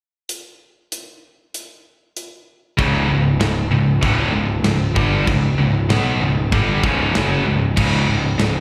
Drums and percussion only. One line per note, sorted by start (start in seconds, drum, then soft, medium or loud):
0.29 closed hi-hat medium
0.92 closed hi-hat medium
1.54 closed hi-hat medium
2.17 closed hi-hat medium
2.79 kick loud
2.79 china medium
3.41 snare loud
3.41 china medium
4.02 kick loud
4.02 china medium
4.64 snare loud
4.64 china medium
4.96 kick loud
5.27 kick medium
5.27 china medium
5.90 snare loud
5.90 china medium
6.52 kick loud
6.52 china medium
6.84 kick loud
7.15 snare loud
7.15 china medium
7.77 kick loud
7.77 china medium
7.77 crash loud
8.39 snare loud
8.39 china medium